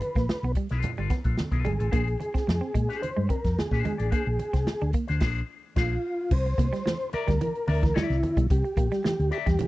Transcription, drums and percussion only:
0.01 closed hi-hat medium
0.01 muted conga medium
0.15 kick medium
0.15 snare soft
0.15 closed hi-hat soft
0.29 snare loud
0.29 high conga medium
0.43 closed hi-hat soft
0.55 kick medium
0.55 closed hi-hat medium
0.69 snare soft
0.69 closed hi-hat soft
0.82 closed hi-hat loud
0.82 muted conga medium
0.82 low conga medium
0.97 closed hi-hat soft
1.10 kick medium
1.10 snare soft
1.10 closed hi-hat medium
1.10 muted conga medium
1.24 kick medium
1.24 closed hi-hat soft
1.37 snare medium
1.37 high conga medium
1.52 kick medium
1.52 closed hi-hat soft
1.65 closed hi-hat medium
1.65 high conga medium
1.80 closed hi-hat medium
1.93 kick loud
1.93 closed hi-hat medium
1.93 muted conga soft
2.08 closed hi-hat soft
2.21 closed hi-hat medium
2.21 muted conga soft
2.35 kick medium
2.35 snare soft
2.35 closed hi-hat medium
2.49 snare loud
2.49 high conga medium
2.63 closed hi-hat soft
2.75 kick loud
2.75 closed hi-hat medium
2.90 snare soft
2.90 closed hi-hat medium
3.03 closed hi-hat medium
3.03 muted conga soft
3.30 kick medium
3.30 closed hi-hat medium
3.30 muted conga medium
3.44 kick medium
3.44 snare soft
3.44 closed hi-hat soft
3.59 snare loud
3.59 high conga medium
3.71 kick medium
3.71 snare soft
3.85 closed hi-hat medium
3.85 high conga medium
3.99 closed hi-hat medium
4.12 kick loud
4.12 closed hi-hat medium
4.39 closed hi-hat medium
4.39 muted conga soft
4.54 kick medium
4.54 snare soft
4.54 closed hi-hat medium
4.67 snare loud
4.67 high conga medium
4.81 closed hi-hat soft
4.93 kick medium
4.93 closed hi-hat medium
5.08 snare soft
5.08 closed hi-hat medium
5.20 kick loud
5.20 snare loud
5.20 crash medium
5.76 kick loud
5.76 snare loud
5.76 crash medium
6.31 kick loud
6.31 crash loud
6.31 muted conga soft
6.46 closed hi-hat soft
6.58 kick loud
6.58 closed hi-hat medium
6.58 muted conga medium
6.73 snare soft
6.73 closed hi-hat medium
6.87 snare loud
6.87 high conga medium
7.01 closed hi-hat soft
7.13 closed hi-hat medium
7.28 kick medium
7.28 snare soft
7.28 closed hi-hat soft
7.41 closed hi-hat medium
7.41 muted conga medium
7.55 closed hi-hat soft
7.68 open hi-hat medium
7.68 muted conga medium
7.83 kick loud
7.83 snare soft
7.83 closed hi-hat medium
7.97 snare loud
7.97 high conga medium
8.10 snare soft
8.10 closed hi-hat soft
8.23 closed hi-hat medium
8.23 high conga medium
8.37 kick medium
8.37 closed hi-hat medium
8.50 kick loud
8.50 closed hi-hat medium
8.50 muted conga soft
8.65 closed hi-hat soft
8.77 kick loud
8.77 closed hi-hat medium
8.77 muted conga medium
8.92 snare soft
8.92 closed hi-hat soft
9.05 snare loud
9.05 high conga medium
9.20 closed hi-hat soft
9.32 closed hi-hat medium
9.46 kick loud
9.46 snare soft
9.46 closed hi-hat medium
9.59 closed hi-hat loud
9.59 muted conga medium
9.59 low conga medium

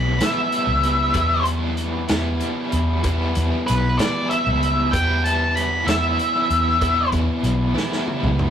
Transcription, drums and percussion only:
0.21 snare loud
0.21 closed hi-hat medium
0.52 closed hi-hat medium
0.83 closed hi-hat medium
1.14 kick loud
1.14 closed hi-hat medium
1.45 closed hi-hat medium
1.77 closed hi-hat medium
2.09 snare loud
2.09 closed hi-hat medium
2.40 closed hi-hat medium
2.72 closed hi-hat medium
3.04 kick loud
3.04 closed hi-hat medium
3.35 closed hi-hat medium
3.68 closed hi-hat medium
3.99 snare loud
3.99 closed hi-hat medium
4.31 closed hi-hat medium
4.63 closed hi-hat medium
4.93 kick loud
4.93 closed hi-hat loud
5.25 closed hi-hat medium
5.57 closed hi-hat medium
5.88 snare loud
5.88 closed hi-hat medium
6.19 closed hi-hat medium
6.50 closed hi-hat medium
6.81 kick loud
6.81 closed hi-hat medium
7.12 kick medium
7.12 closed hi-hat medium
7.44 closed hi-hat medium
7.77 snare medium
7.92 snare medium
8.07 high tom medium
8.24 mid tom medium
8.39 mid tom medium

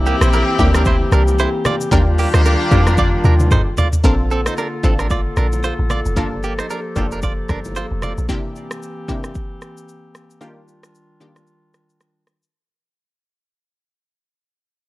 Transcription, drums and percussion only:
0.06 low bongo soft
0.06 shaker medium
0.21 cross-stick loud
0.21 shaker medium
0.33 high bongo medium
0.33 shaker medium
0.59 kick medium
0.59 low bongo medium
0.59 shaker medium
0.74 cross-stick loud
0.74 low bongo medium
0.74 shaker medium
0.85 kick loud
0.85 low conga medium
0.85 shaker medium
1.12 cross-stick medium
1.12 shaker medium
1.28 low bongo medium
1.28 shaker medium
1.39 high bongo medium
1.39 shaker medium
1.65 cross-stick loud
1.65 high bongo medium
1.65 low conga medium
1.65 shaker medium
1.81 shaker medium
1.92 kick loud
1.92 low conga medium
1.92 shaker medium
2.18 open hi-hat medium
2.18 low bongo medium
2.18 shaker medium
2.34 cross-stick loud
2.34 shaker medium
2.45 high bongo medium
2.45 shaker medium
2.71 kick medium
2.71 low bongo medium
2.71 shaker medium
2.87 cross-stick medium
2.87 low bongo medium
2.87 shaker medium
2.97 kick loud
2.97 high tom medium
2.97 low conga medium
2.97 shaker medium
3.24 mid tom medium
3.24 shaker medium
3.40 mid tom medium
3.40 low bongo medium
3.40 shaker medium
3.51 kick medium
3.51 mid tom medium
3.51 high bongo medium
3.51 shaker medium
3.77 floor tom loud
3.77 high bongo medium
3.77 low conga medium
3.77 shaker medium
3.93 floor tom loud
3.93 shaker medium
4.04 kick loud
4.04 low conga medium
4.04 shaker medium
4.31 shaker soft
4.46 cross-stick loud
4.46 shaker medium
4.58 high bongo medium
4.58 shaker medium
4.84 kick medium
4.84 low bongo medium
4.84 shaker medium
4.99 cross-stick medium
4.99 shaker medium
5.10 kick medium
5.10 low conga medium
5.10 shaker medium
5.37 cross-stick medium
5.37 shaker soft
5.52 low bongo medium
5.52 shaker medium
5.64 high bongo medium
5.64 shaker medium
5.90 cross-stick medium
5.90 low conga medium
5.90 shaker medium
6.06 shaker medium
6.17 kick loud
6.17 low conga medium
6.17 shaker medium
6.43 shaker medium
6.59 cross-stick loud
6.59 shaker medium
6.70 high bongo medium
6.70 shaker medium
6.96 kick medium
6.96 low bongo medium
6.96 shaker medium
7.11 shaker medium
7.22 kick medium
7.22 low conga medium
7.22 shaker medium
7.49 kick medium
7.49 cross-stick medium
7.49 shaker soft
7.64 low bongo medium
7.64 shaker medium
7.76 high bongo medium
7.76 shaker medium
8.02 cross-stick medium
8.02 low conga medium
8.02 shaker medium
8.18 shaker medium
8.29 kick loud
8.29 shaker medium
8.56 shaker soft
8.71 cross-stick loud
8.71 shaker medium
8.82 shaker medium
9.08 kick medium
9.08 shaker medium
9.24 cross-stick medium
9.24 shaker medium
9.35 kick medium
9.35 shaker medium
9.62 cross-stick medium
9.62 shaker soft
9.77 shaker medium
9.88 shaker medium
10.15 cross-stick medium
10.15 shaker medium
10.30 shaker medium
10.41 shaker medium
10.68 shaker soft
10.83 cross-stick loud
10.83 shaker medium
10.95 shaker medium
11.21 shaker medium
11.36 cross-stick medium
11.36 shaker medium
11.47 shaker medium
11.74 cross-stick medium
11.74 shaker soft
11.90 shaker medium
12.01 cross-stick medium
12.01 shaker medium
12.27 cross-stick medium
12.27 shaker medium
12.43 shaker medium

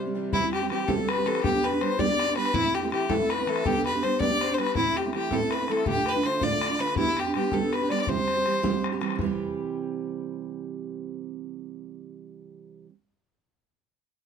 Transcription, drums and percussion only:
0.32 bodhran medium
0.53 bodhran medium
0.70 bodhran medium
0.88 bodhran medium
1.09 bodhran medium
1.26 bodhran medium
1.35 bodhran medium
1.44 bodhran medium
1.64 bodhran medium
1.81 bodhran medium
1.99 bodhran loud
2.19 bodhran medium
2.36 bodhran medium
2.45 bodhran medium
2.54 bodhran medium
2.75 bodhran medium
2.92 bodhran medium
3.10 bodhran loud
3.30 bodhran medium
3.47 bodhran medium
3.56 bodhran medium
3.65 bodhran medium
3.86 bodhran medium
4.03 bodhran medium
4.20 bodhran medium
4.41 bodhran medium
4.58 bodhran medium
4.67 bodhran medium
4.75 bodhran medium
4.96 bodhran medium
5.13 bodhran medium
5.31 bodhran medium
5.51 bodhran medium
5.68 bodhran medium
5.77 bodhran soft
5.86 bodhran medium
6.06 bodhran medium
6.23 bodhran medium
6.41 bodhran medium
6.61 bodhran medium
6.79 bodhran medium
6.87 bodhran medium
6.96 bodhran medium
7.17 bodhran medium
7.34 bodhran medium
7.52 bodhran medium
7.73 bodhran medium
7.90 bodhran medium
7.99 bodhran soft
8.07 bodhran medium
8.28 bodhran medium
8.46 bodhran medium
8.64 bodhran medium
8.84 bodhran medium
9.01 bodhran medium
9.10 bodhran medium
9.19 bodhran medium

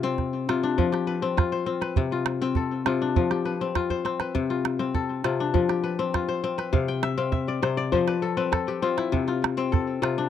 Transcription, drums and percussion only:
0.18 calabash thump medium
0.18 calabash click soft
0.49 calabash click medium
0.79 calabash thump medium
0.79 calabash click soft
0.94 calabash click soft
1.38 calabash thump medium
1.38 calabash click medium
1.82 calabash click medium
1.96 calabash thump medium
2.26 calabash click medium
2.55 calabash thump medium
2.86 calabash click medium
3.16 calabash thump medium
3.31 calabash click soft
3.45 calabash click soft
3.75 calabash thump medium
3.75 calabash click medium
3.90 calabash thump soft
4.06 calabash click soft
4.20 calabash click soft
4.35 calabash thump medium
4.51 calabash click soft
4.65 calabash click medium
4.94 calabash thump medium
4.94 calabash click soft
5.24 calabash click medium
5.55 calabash thump medium
5.55 calabash click soft
5.69 calabash click soft
6.14 calabash thump medium
6.14 calabash click medium
6.59 calabash click soft
6.73 calabash thump medium
6.89 calabash click soft
7.03 calabash click medium
7.32 calabash thump medium
7.32 calabash click soft
7.63 calabash click medium
7.93 calabash thump medium
7.93 calabash click soft
8.08 calabash click medium
8.53 calabash thump medium
8.53 calabash click medium
8.98 calabash click medium
9.13 calabash thump medium
9.28 calabash click soft
9.44 calabash click medium
9.73 calabash thump medium
9.73 calabash click soft
10.03 calabash click medium

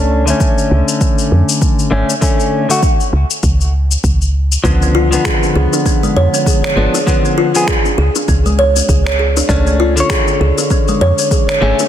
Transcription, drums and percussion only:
0.28 cabasa medium
0.40 kick loud
0.40 cabasa medium
0.58 cabasa soft
0.88 cabasa medium
1.01 kick medium
1.01 cabasa medium
1.18 cabasa soft
1.49 cabasa medium
1.62 kick medium
1.62 cabasa medium
1.79 cabasa soft
2.10 cabasa medium
2.22 kick loud
2.22 cabasa medium
2.40 cabasa soft
2.70 cabasa medium
2.83 kick loud
2.83 cabasa medium
3.00 cabasa soft
3.31 cabasa medium
3.43 kick medium
3.43 cabasa medium
3.61 cabasa soft
3.91 cabasa medium
4.04 kick medium
4.04 cabasa medium
4.22 cabasa soft
4.52 cabasa medium
4.64 kick loud
4.64 cabasa medium
4.82 cabasa soft
5.13 cabasa medium
5.25 finger snap medium
5.25 kick loud
5.25 cabasa medium
5.43 cabasa soft
5.73 cabasa medium
5.86 kick medium
5.86 cabasa soft
6.04 cabasa soft
6.34 cabasa medium
6.46 kick medium
6.46 cabasa medium
6.64 finger snap medium
6.64 cabasa soft
6.95 cabasa medium
7.07 kick medium
7.07 cabasa medium
7.25 cabasa soft
7.55 cabasa medium
7.68 finger snap medium
7.68 kick medium
7.68 cabasa soft
7.85 cabasa soft
8.15 cabasa medium
8.28 kick loud
8.28 cabasa soft
8.46 cabasa soft
8.76 cabasa medium
8.89 kick medium
8.89 cabasa medium
9.07 finger snap medium
9.07 cabasa soft
9.37 cabasa medium
9.49 kick medium
9.49 cabasa soft
9.67 cabasa soft
9.97 cabasa medium
10.10 finger snap medium
10.10 kick medium
10.10 cabasa medium
10.28 cabasa soft
10.58 cabasa medium
10.70 kick medium
10.70 cabasa soft
10.88 cabasa soft
11.18 cabasa medium
11.31 kick medium
11.31 cabasa medium
11.49 finger snap medium
11.49 cabasa soft
11.79 cabasa medium

